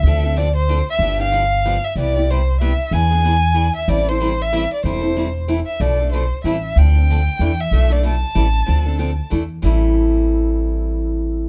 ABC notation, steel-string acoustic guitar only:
X:1
M:3/4
L:1/8
Q:"Swing" 1/4=188
K:Am
V:1 name="Steel-string acoustic guitar"
[D,F,CDA] [CDA] [D,F,CDA] z [D,F,CDA] z | [D,F,B,DG] [B,DG] [D,F,B,DG] z [D,F,B,DG] z | [C,G,B,EG] [B,EG] [C,G,B,EG] z [C,G,B,EG] z | [E,B,D^G] [B,DG] [E,B,DG] z [E,B,DG] z |
[E,G,CEA] [CEA] [E,G,CEA] z [E,G,CEA] z | [E,G,CEA] [CEA] [E,G,CEA] z [E,G,CEA] z | [B,,F,A,DA] [A,DA] [B,,F,A,DA] z [E,G,CEA] z | [D,F,CDA] [CDA] [D,F,CDA] z [E,A,DEA] z |
[B,,F,A,DA] [A,DA] [B,,F,A,DA] z [E,G,CEA] z | [D,F,CDA] [CDA] [D,F,CDA] z [E,A,DEA] z | [A,,E,G,CEA]6- | [A,,E,G,CEA]6 |]